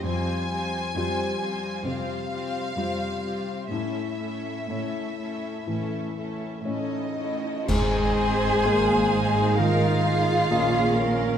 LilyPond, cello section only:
\new Staff \with { instrumentName = "Cello section" } { \clef bass \time 4/4 \key aes \major \tempo 4 = 64 f,4 f,4 f,4 f,4 | a,4 a,4 a,4 a,4 | aes,2. bes,4 | }